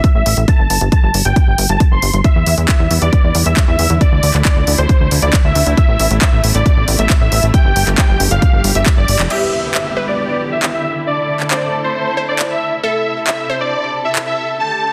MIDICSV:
0, 0, Header, 1, 7, 480
1, 0, Start_track
1, 0, Key_signature, 0, "minor"
1, 0, Tempo, 441176
1, 523, Time_signature, 4, 2, 24, 8
1, 16242, End_track
2, 0, Start_track
2, 0, Title_t, "Supersaw synth"
2, 0, Program_c, 0, 81
2, 161, Note_on_c, 0, 76, 95
2, 402, Note_off_c, 0, 76, 0
2, 521, Note_on_c, 0, 81, 103
2, 842, Note_off_c, 0, 81, 0
2, 1001, Note_on_c, 0, 81, 96
2, 1242, Note_off_c, 0, 81, 0
2, 1361, Note_on_c, 0, 79, 96
2, 1682, Note_off_c, 0, 79, 0
2, 1842, Note_on_c, 0, 81, 89
2, 2002, Note_off_c, 0, 81, 0
2, 2081, Note_on_c, 0, 84, 95
2, 2322, Note_off_c, 0, 84, 0
2, 2441, Note_on_c, 0, 76, 103
2, 2762, Note_off_c, 0, 76, 0
2, 2922, Note_on_c, 0, 76, 94
2, 3163, Note_off_c, 0, 76, 0
2, 3281, Note_on_c, 0, 74, 97
2, 3602, Note_off_c, 0, 74, 0
2, 3761, Note_on_c, 0, 76, 90
2, 3922, Note_off_c, 0, 76, 0
2, 4001, Note_on_c, 0, 76, 98
2, 4242, Note_off_c, 0, 76, 0
2, 4361, Note_on_c, 0, 74, 105
2, 4682, Note_off_c, 0, 74, 0
2, 4841, Note_on_c, 0, 74, 94
2, 5082, Note_off_c, 0, 74, 0
2, 5202, Note_on_c, 0, 72, 95
2, 5523, Note_off_c, 0, 72, 0
2, 5683, Note_on_c, 0, 74, 88
2, 5843, Note_off_c, 0, 74, 0
2, 5923, Note_on_c, 0, 76, 102
2, 6163, Note_off_c, 0, 76, 0
2, 6283, Note_on_c, 0, 76, 106
2, 6603, Note_off_c, 0, 76, 0
2, 6763, Note_on_c, 0, 76, 97
2, 7003, Note_off_c, 0, 76, 0
2, 7124, Note_on_c, 0, 74, 100
2, 7443, Note_off_c, 0, 74, 0
2, 7602, Note_on_c, 0, 76, 90
2, 7763, Note_off_c, 0, 76, 0
2, 7841, Note_on_c, 0, 76, 99
2, 8082, Note_off_c, 0, 76, 0
2, 8202, Note_on_c, 0, 79, 104
2, 8522, Note_off_c, 0, 79, 0
2, 8681, Note_on_c, 0, 79, 96
2, 8922, Note_off_c, 0, 79, 0
2, 9043, Note_on_c, 0, 77, 96
2, 9363, Note_off_c, 0, 77, 0
2, 9523, Note_on_c, 0, 76, 90
2, 9683, Note_off_c, 0, 76, 0
2, 9763, Note_on_c, 0, 74, 103
2, 10003, Note_off_c, 0, 74, 0
2, 10122, Note_on_c, 0, 76, 101
2, 10443, Note_off_c, 0, 76, 0
2, 10601, Note_on_c, 0, 76, 91
2, 10842, Note_off_c, 0, 76, 0
2, 10962, Note_on_c, 0, 74, 95
2, 11283, Note_off_c, 0, 74, 0
2, 11443, Note_on_c, 0, 76, 86
2, 11603, Note_off_c, 0, 76, 0
2, 11683, Note_on_c, 0, 76, 94
2, 11923, Note_off_c, 0, 76, 0
2, 12042, Note_on_c, 0, 74, 101
2, 12363, Note_off_c, 0, 74, 0
2, 12523, Note_on_c, 0, 74, 93
2, 12763, Note_off_c, 0, 74, 0
2, 12882, Note_on_c, 0, 72, 94
2, 13202, Note_off_c, 0, 72, 0
2, 13364, Note_on_c, 0, 74, 87
2, 13523, Note_off_c, 0, 74, 0
2, 13602, Note_on_c, 0, 76, 96
2, 13842, Note_off_c, 0, 76, 0
2, 13962, Note_on_c, 0, 76, 102
2, 14283, Note_off_c, 0, 76, 0
2, 14442, Note_on_c, 0, 76, 92
2, 14682, Note_off_c, 0, 76, 0
2, 14802, Note_on_c, 0, 74, 92
2, 15123, Note_off_c, 0, 74, 0
2, 15282, Note_on_c, 0, 76, 86
2, 15442, Note_off_c, 0, 76, 0
2, 15521, Note_on_c, 0, 76, 92
2, 15762, Note_off_c, 0, 76, 0
2, 15881, Note_on_c, 0, 81, 102
2, 16202, Note_off_c, 0, 81, 0
2, 16242, End_track
3, 0, Start_track
3, 0, Title_t, "Synth pluck"
3, 0, Program_c, 1, 84
3, 10124, Note_on_c, 1, 67, 99
3, 10748, Note_off_c, 1, 67, 0
3, 10843, Note_on_c, 1, 71, 90
3, 11707, Note_off_c, 1, 71, 0
3, 12523, Note_on_c, 1, 72, 89
3, 13147, Note_off_c, 1, 72, 0
3, 13242, Note_on_c, 1, 72, 90
3, 13866, Note_off_c, 1, 72, 0
3, 13964, Note_on_c, 1, 69, 99
3, 14587, Note_off_c, 1, 69, 0
3, 14683, Note_on_c, 1, 72, 93
3, 15547, Note_off_c, 1, 72, 0
3, 16242, End_track
4, 0, Start_track
4, 0, Title_t, "String section"
4, 0, Program_c, 2, 48
4, 2442, Note_on_c, 2, 64, 89
4, 2443, Note_on_c, 2, 50, 81
4, 2443, Note_on_c, 2, 55, 74
4, 2443, Note_on_c, 2, 59, 71
4, 4344, Note_off_c, 2, 55, 0
4, 4344, Note_off_c, 2, 59, 0
4, 4362, Note_on_c, 2, 52, 73
4, 4362, Note_on_c, 2, 57, 77
4, 6244, Note_off_c, 2, 50, 0
4, 6263, Note_off_c, 2, 52, 0
4, 6283, Note_on_c, 2, 48, 82
4, 6283, Note_on_c, 2, 59, 73
4, 8159, Note_off_c, 2, 64, 0
4, 8184, Note_off_c, 2, 48, 0
4, 8184, Note_off_c, 2, 59, 0
4, 8203, Note_on_c, 2, 50, 83
4, 8203, Note_on_c, 2, 55, 75
4, 8203, Note_on_c, 2, 67, 89
4, 10079, Note_off_c, 2, 57, 0
4, 10104, Note_off_c, 2, 50, 0
4, 10104, Note_off_c, 2, 55, 0
4, 10104, Note_off_c, 2, 67, 0
4, 10122, Note_on_c, 2, 50, 78
4, 10123, Note_on_c, 2, 59, 72
4, 10123, Note_on_c, 2, 64, 74
4, 10123, Note_on_c, 2, 67, 85
4, 12024, Note_off_c, 2, 59, 0
4, 12024, Note_off_c, 2, 67, 0
4, 12043, Note_on_c, 2, 57, 72
4, 12043, Note_on_c, 2, 69, 88
4, 13924, Note_off_c, 2, 50, 0
4, 13944, Note_off_c, 2, 57, 0
4, 13944, Note_off_c, 2, 69, 0
4, 13964, Note_on_c, 2, 48, 77
4, 13964, Note_on_c, 2, 69, 87
4, 15839, Note_off_c, 2, 64, 0
4, 15864, Note_off_c, 2, 48, 0
4, 15882, Note_on_c, 2, 50, 79
4, 15882, Note_on_c, 2, 57, 75
4, 15882, Note_on_c, 2, 67, 71
4, 16242, Note_off_c, 2, 50, 0
4, 16242, Note_off_c, 2, 57, 0
4, 16242, Note_off_c, 2, 67, 0
4, 16242, Note_off_c, 2, 69, 0
4, 16242, End_track
5, 0, Start_track
5, 0, Title_t, "Analog synth bass"
5, 0, Program_c, 3, 38
5, 162, Note_on_c, 3, 33, 84
5, 254, Note_off_c, 3, 33, 0
5, 283, Note_on_c, 3, 33, 100
5, 374, Note_off_c, 3, 33, 0
5, 403, Note_on_c, 3, 33, 91
5, 494, Note_off_c, 3, 33, 0
5, 643, Note_on_c, 3, 31, 86
5, 734, Note_off_c, 3, 31, 0
5, 763, Note_on_c, 3, 31, 99
5, 854, Note_off_c, 3, 31, 0
5, 884, Note_on_c, 3, 31, 90
5, 974, Note_off_c, 3, 31, 0
5, 1124, Note_on_c, 3, 31, 86
5, 1214, Note_off_c, 3, 31, 0
5, 1243, Note_on_c, 3, 31, 96
5, 1334, Note_off_c, 3, 31, 0
5, 1363, Note_on_c, 3, 31, 93
5, 1454, Note_off_c, 3, 31, 0
5, 1604, Note_on_c, 3, 31, 82
5, 1694, Note_off_c, 3, 31, 0
5, 1724, Note_on_c, 3, 31, 101
5, 1814, Note_off_c, 3, 31, 0
5, 1844, Note_on_c, 3, 31, 93
5, 1934, Note_off_c, 3, 31, 0
5, 2084, Note_on_c, 3, 31, 85
5, 2175, Note_off_c, 3, 31, 0
5, 2204, Note_on_c, 3, 31, 102
5, 2294, Note_off_c, 3, 31, 0
5, 2323, Note_on_c, 3, 31, 92
5, 2414, Note_off_c, 3, 31, 0
5, 2563, Note_on_c, 3, 40, 86
5, 2654, Note_off_c, 3, 40, 0
5, 2683, Note_on_c, 3, 40, 103
5, 2774, Note_off_c, 3, 40, 0
5, 2803, Note_on_c, 3, 40, 89
5, 2894, Note_off_c, 3, 40, 0
5, 3044, Note_on_c, 3, 40, 82
5, 3134, Note_off_c, 3, 40, 0
5, 3162, Note_on_c, 3, 40, 98
5, 3253, Note_off_c, 3, 40, 0
5, 3284, Note_on_c, 3, 40, 88
5, 3374, Note_off_c, 3, 40, 0
5, 3524, Note_on_c, 3, 40, 85
5, 3614, Note_off_c, 3, 40, 0
5, 3644, Note_on_c, 3, 40, 96
5, 3734, Note_off_c, 3, 40, 0
5, 3764, Note_on_c, 3, 40, 92
5, 3854, Note_off_c, 3, 40, 0
5, 4004, Note_on_c, 3, 40, 89
5, 4094, Note_off_c, 3, 40, 0
5, 4124, Note_on_c, 3, 40, 100
5, 4214, Note_off_c, 3, 40, 0
5, 4244, Note_on_c, 3, 40, 92
5, 4334, Note_off_c, 3, 40, 0
5, 4483, Note_on_c, 3, 38, 87
5, 4574, Note_off_c, 3, 38, 0
5, 4603, Note_on_c, 3, 38, 101
5, 4694, Note_off_c, 3, 38, 0
5, 4725, Note_on_c, 3, 38, 90
5, 4815, Note_off_c, 3, 38, 0
5, 4965, Note_on_c, 3, 38, 87
5, 5055, Note_off_c, 3, 38, 0
5, 5085, Note_on_c, 3, 38, 101
5, 5175, Note_off_c, 3, 38, 0
5, 5205, Note_on_c, 3, 38, 93
5, 5295, Note_off_c, 3, 38, 0
5, 5444, Note_on_c, 3, 38, 87
5, 5534, Note_off_c, 3, 38, 0
5, 5565, Note_on_c, 3, 38, 101
5, 5655, Note_off_c, 3, 38, 0
5, 5684, Note_on_c, 3, 38, 93
5, 5775, Note_off_c, 3, 38, 0
5, 5924, Note_on_c, 3, 38, 87
5, 6014, Note_off_c, 3, 38, 0
5, 6044, Note_on_c, 3, 38, 100
5, 6134, Note_off_c, 3, 38, 0
5, 6164, Note_on_c, 3, 38, 89
5, 6254, Note_off_c, 3, 38, 0
5, 6404, Note_on_c, 3, 33, 87
5, 6494, Note_off_c, 3, 33, 0
5, 6525, Note_on_c, 3, 33, 105
5, 6615, Note_off_c, 3, 33, 0
5, 6644, Note_on_c, 3, 33, 90
5, 6734, Note_off_c, 3, 33, 0
5, 6884, Note_on_c, 3, 33, 85
5, 6974, Note_off_c, 3, 33, 0
5, 7004, Note_on_c, 3, 33, 97
5, 7095, Note_off_c, 3, 33, 0
5, 7125, Note_on_c, 3, 33, 94
5, 7215, Note_off_c, 3, 33, 0
5, 7363, Note_on_c, 3, 33, 85
5, 7454, Note_off_c, 3, 33, 0
5, 7484, Note_on_c, 3, 33, 104
5, 7574, Note_off_c, 3, 33, 0
5, 7604, Note_on_c, 3, 33, 94
5, 7694, Note_off_c, 3, 33, 0
5, 7843, Note_on_c, 3, 33, 90
5, 7934, Note_off_c, 3, 33, 0
5, 7963, Note_on_c, 3, 33, 102
5, 8054, Note_off_c, 3, 33, 0
5, 8083, Note_on_c, 3, 33, 88
5, 8174, Note_off_c, 3, 33, 0
5, 8323, Note_on_c, 3, 31, 89
5, 8414, Note_off_c, 3, 31, 0
5, 8442, Note_on_c, 3, 31, 99
5, 8533, Note_off_c, 3, 31, 0
5, 8562, Note_on_c, 3, 31, 91
5, 8654, Note_off_c, 3, 31, 0
5, 8802, Note_on_c, 3, 31, 87
5, 8893, Note_off_c, 3, 31, 0
5, 8923, Note_on_c, 3, 31, 100
5, 9014, Note_off_c, 3, 31, 0
5, 9043, Note_on_c, 3, 31, 93
5, 9134, Note_off_c, 3, 31, 0
5, 9283, Note_on_c, 3, 31, 83
5, 9374, Note_off_c, 3, 31, 0
5, 9403, Note_on_c, 3, 31, 103
5, 9494, Note_off_c, 3, 31, 0
5, 9522, Note_on_c, 3, 31, 94
5, 9614, Note_off_c, 3, 31, 0
5, 9762, Note_on_c, 3, 31, 90
5, 9853, Note_off_c, 3, 31, 0
5, 9883, Note_on_c, 3, 31, 102
5, 9974, Note_off_c, 3, 31, 0
5, 10003, Note_on_c, 3, 29, 93
5, 10094, Note_off_c, 3, 29, 0
5, 16242, End_track
6, 0, Start_track
6, 0, Title_t, "Downlifter"
6, 0, Program_c, 4, 103
6, 10122, Note_on_c, 4, 60, 68
6, 13963, Note_off_c, 4, 60, 0
6, 16242, End_track
7, 0, Start_track
7, 0, Title_t, "Drums"
7, 42, Note_on_c, 9, 36, 126
7, 43, Note_on_c, 9, 42, 62
7, 151, Note_off_c, 9, 36, 0
7, 151, Note_off_c, 9, 42, 0
7, 283, Note_on_c, 9, 46, 109
7, 391, Note_off_c, 9, 46, 0
7, 402, Note_on_c, 9, 42, 65
7, 511, Note_off_c, 9, 42, 0
7, 522, Note_on_c, 9, 36, 116
7, 522, Note_on_c, 9, 42, 61
7, 631, Note_off_c, 9, 36, 0
7, 631, Note_off_c, 9, 42, 0
7, 762, Note_on_c, 9, 46, 106
7, 871, Note_off_c, 9, 46, 0
7, 882, Note_on_c, 9, 42, 61
7, 991, Note_off_c, 9, 42, 0
7, 1002, Note_on_c, 9, 36, 114
7, 1002, Note_on_c, 9, 42, 64
7, 1111, Note_off_c, 9, 36, 0
7, 1111, Note_off_c, 9, 42, 0
7, 1242, Note_on_c, 9, 46, 109
7, 1350, Note_off_c, 9, 46, 0
7, 1362, Note_on_c, 9, 42, 61
7, 1471, Note_off_c, 9, 42, 0
7, 1482, Note_on_c, 9, 36, 119
7, 1482, Note_on_c, 9, 42, 58
7, 1590, Note_off_c, 9, 36, 0
7, 1591, Note_off_c, 9, 42, 0
7, 1722, Note_on_c, 9, 46, 108
7, 1830, Note_off_c, 9, 46, 0
7, 1841, Note_on_c, 9, 42, 62
7, 1950, Note_off_c, 9, 42, 0
7, 1962, Note_on_c, 9, 36, 125
7, 1962, Note_on_c, 9, 42, 62
7, 2071, Note_off_c, 9, 36, 0
7, 2071, Note_off_c, 9, 42, 0
7, 2202, Note_on_c, 9, 46, 106
7, 2310, Note_off_c, 9, 46, 0
7, 2323, Note_on_c, 9, 42, 60
7, 2431, Note_off_c, 9, 42, 0
7, 2442, Note_on_c, 9, 36, 115
7, 2442, Note_on_c, 9, 42, 58
7, 2550, Note_off_c, 9, 36, 0
7, 2551, Note_off_c, 9, 42, 0
7, 2682, Note_on_c, 9, 46, 100
7, 2790, Note_off_c, 9, 46, 0
7, 2802, Note_on_c, 9, 42, 62
7, 2911, Note_off_c, 9, 42, 0
7, 2922, Note_on_c, 9, 36, 117
7, 2922, Note_on_c, 9, 39, 114
7, 2922, Note_on_c, 9, 42, 62
7, 3031, Note_off_c, 9, 36, 0
7, 3031, Note_off_c, 9, 39, 0
7, 3031, Note_off_c, 9, 42, 0
7, 3162, Note_on_c, 9, 46, 102
7, 3271, Note_off_c, 9, 46, 0
7, 3282, Note_on_c, 9, 42, 64
7, 3390, Note_off_c, 9, 42, 0
7, 3402, Note_on_c, 9, 36, 112
7, 3402, Note_on_c, 9, 42, 58
7, 3511, Note_off_c, 9, 36, 0
7, 3511, Note_off_c, 9, 42, 0
7, 3642, Note_on_c, 9, 46, 107
7, 3750, Note_off_c, 9, 46, 0
7, 3761, Note_on_c, 9, 42, 62
7, 3870, Note_off_c, 9, 42, 0
7, 3881, Note_on_c, 9, 39, 108
7, 3881, Note_on_c, 9, 42, 60
7, 3882, Note_on_c, 9, 36, 116
7, 3990, Note_off_c, 9, 39, 0
7, 3990, Note_off_c, 9, 42, 0
7, 3991, Note_off_c, 9, 36, 0
7, 4121, Note_on_c, 9, 46, 101
7, 4230, Note_off_c, 9, 46, 0
7, 4242, Note_on_c, 9, 42, 62
7, 4351, Note_off_c, 9, 42, 0
7, 4362, Note_on_c, 9, 36, 108
7, 4362, Note_on_c, 9, 42, 61
7, 4471, Note_off_c, 9, 36, 0
7, 4471, Note_off_c, 9, 42, 0
7, 4602, Note_on_c, 9, 46, 99
7, 4710, Note_off_c, 9, 46, 0
7, 4722, Note_on_c, 9, 39, 34
7, 4722, Note_on_c, 9, 42, 62
7, 4831, Note_off_c, 9, 39, 0
7, 4831, Note_off_c, 9, 42, 0
7, 4842, Note_on_c, 9, 39, 115
7, 4842, Note_on_c, 9, 42, 66
7, 4843, Note_on_c, 9, 36, 106
7, 4951, Note_off_c, 9, 36, 0
7, 4951, Note_off_c, 9, 39, 0
7, 4951, Note_off_c, 9, 42, 0
7, 5082, Note_on_c, 9, 46, 100
7, 5191, Note_off_c, 9, 46, 0
7, 5203, Note_on_c, 9, 42, 66
7, 5312, Note_off_c, 9, 42, 0
7, 5323, Note_on_c, 9, 36, 108
7, 5323, Note_on_c, 9, 42, 60
7, 5432, Note_off_c, 9, 36, 0
7, 5432, Note_off_c, 9, 42, 0
7, 5563, Note_on_c, 9, 46, 102
7, 5672, Note_off_c, 9, 46, 0
7, 5683, Note_on_c, 9, 42, 66
7, 5792, Note_off_c, 9, 42, 0
7, 5803, Note_on_c, 9, 36, 116
7, 5803, Note_on_c, 9, 39, 112
7, 5803, Note_on_c, 9, 42, 65
7, 5911, Note_off_c, 9, 39, 0
7, 5911, Note_off_c, 9, 42, 0
7, 5912, Note_off_c, 9, 36, 0
7, 6043, Note_on_c, 9, 46, 101
7, 6151, Note_off_c, 9, 46, 0
7, 6163, Note_on_c, 9, 42, 64
7, 6272, Note_off_c, 9, 42, 0
7, 6283, Note_on_c, 9, 36, 110
7, 6283, Note_on_c, 9, 42, 66
7, 6391, Note_off_c, 9, 36, 0
7, 6391, Note_off_c, 9, 42, 0
7, 6523, Note_on_c, 9, 46, 103
7, 6631, Note_off_c, 9, 46, 0
7, 6643, Note_on_c, 9, 42, 67
7, 6752, Note_off_c, 9, 42, 0
7, 6763, Note_on_c, 9, 36, 111
7, 6763, Note_on_c, 9, 39, 119
7, 6763, Note_on_c, 9, 42, 69
7, 6871, Note_off_c, 9, 36, 0
7, 6872, Note_off_c, 9, 39, 0
7, 6872, Note_off_c, 9, 42, 0
7, 7003, Note_on_c, 9, 46, 100
7, 7112, Note_off_c, 9, 46, 0
7, 7123, Note_on_c, 9, 42, 69
7, 7231, Note_off_c, 9, 42, 0
7, 7243, Note_on_c, 9, 36, 109
7, 7243, Note_on_c, 9, 42, 63
7, 7352, Note_off_c, 9, 36, 0
7, 7352, Note_off_c, 9, 42, 0
7, 7483, Note_on_c, 9, 46, 100
7, 7592, Note_off_c, 9, 46, 0
7, 7603, Note_on_c, 9, 42, 70
7, 7711, Note_off_c, 9, 42, 0
7, 7723, Note_on_c, 9, 36, 111
7, 7723, Note_on_c, 9, 39, 118
7, 7723, Note_on_c, 9, 42, 65
7, 7831, Note_off_c, 9, 36, 0
7, 7832, Note_off_c, 9, 39, 0
7, 7832, Note_off_c, 9, 42, 0
7, 7963, Note_on_c, 9, 46, 101
7, 8071, Note_off_c, 9, 46, 0
7, 8083, Note_on_c, 9, 42, 70
7, 8192, Note_off_c, 9, 42, 0
7, 8202, Note_on_c, 9, 36, 115
7, 8203, Note_on_c, 9, 42, 69
7, 8311, Note_off_c, 9, 36, 0
7, 8312, Note_off_c, 9, 42, 0
7, 8442, Note_on_c, 9, 46, 100
7, 8551, Note_off_c, 9, 46, 0
7, 8562, Note_on_c, 9, 39, 36
7, 8562, Note_on_c, 9, 42, 68
7, 8671, Note_off_c, 9, 39, 0
7, 8671, Note_off_c, 9, 42, 0
7, 8682, Note_on_c, 9, 36, 112
7, 8683, Note_on_c, 9, 39, 120
7, 8683, Note_on_c, 9, 42, 72
7, 8791, Note_off_c, 9, 36, 0
7, 8791, Note_off_c, 9, 39, 0
7, 8791, Note_off_c, 9, 42, 0
7, 8922, Note_on_c, 9, 46, 106
7, 9031, Note_off_c, 9, 46, 0
7, 9042, Note_on_c, 9, 42, 72
7, 9151, Note_off_c, 9, 42, 0
7, 9162, Note_on_c, 9, 36, 106
7, 9162, Note_on_c, 9, 42, 64
7, 9271, Note_off_c, 9, 36, 0
7, 9271, Note_off_c, 9, 42, 0
7, 9402, Note_on_c, 9, 46, 103
7, 9511, Note_off_c, 9, 46, 0
7, 9521, Note_on_c, 9, 42, 70
7, 9630, Note_off_c, 9, 42, 0
7, 9641, Note_on_c, 9, 39, 108
7, 9641, Note_on_c, 9, 42, 67
7, 9642, Note_on_c, 9, 36, 117
7, 9750, Note_off_c, 9, 39, 0
7, 9750, Note_off_c, 9, 42, 0
7, 9751, Note_off_c, 9, 36, 0
7, 9882, Note_on_c, 9, 46, 98
7, 9990, Note_off_c, 9, 46, 0
7, 10002, Note_on_c, 9, 39, 83
7, 10002, Note_on_c, 9, 42, 69
7, 10111, Note_off_c, 9, 39, 0
7, 10111, Note_off_c, 9, 42, 0
7, 10122, Note_on_c, 9, 49, 76
7, 10231, Note_off_c, 9, 49, 0
7, 10603, Note_on_c, 9, 39, 118
7, 10711, Note_off_c, 9, 39, 0
7, 11562, Note_on_c, 9, 39, 115
7, 11671, Note_off_c, 9, 39, 0
7, 12402, Note_on_c, 9, 39, 35
7, 12511, Note_off_c, 9, 39, 0
7, 12522, Note_on_c, 9, 39, 121
7, 12630, Note_off_c, 9, 39, 0
7, 13481, Note_on_c, 9, 39, 117
7, 13590, Note_off_c, 9, 39, 0
7, 14441, Note_on_c, 9, 39, 115
7, 14550, Note_off_c, 9, 39, 0
7, 15401, Note_on_c, 9, 39, 118
7, 15510, Note_off_c, 9, 39, 0
7, 16242, End_track
0, 0, End_of_file